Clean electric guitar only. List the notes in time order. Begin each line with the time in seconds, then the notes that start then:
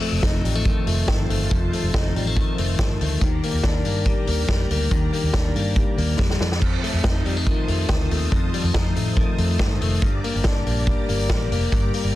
Already playing: F2
0.01 A3
0.23 D#4
0.44 G3
0.55 A3
0.66 D#3
0.88 A3
1.09 D#3
1.29 A3
1.51 F2
1.73 A3
1.95 D#4
2.16 G3
2.27 A3
2.37 D#3
2.59 A3
3.02 A3
3.24 D#3
3.44 A#3
3.65 D4
3.86 A#3
4.06 G3
4.28 A#3
4.50 G3
4.71 A#3
4.92 D#3
5.13 A#3
5.34 D4
5.56 A#3
5.77 G3
5.98 A#3
6.20 G3
6.41 F2
6.62 F2
6.84 A3
7.05 D#4
7.25 G3
7.37 A3
7.47 D#3
7.67 A3
7.89 D#3
8.11 A3
8.33 F2
8.54 G3
8.65 A3
8.75 D#4
8.96 A3
9.17 D#3
9.38 A3
9.59 D#3
9.81 A3
10.03 G2
10.24 A#3
10.46 D4
10.67 A#3
10.88 G3
11.09 A#3
11.30 G3
11.52 A#3
11.73 G2
11.94 A#3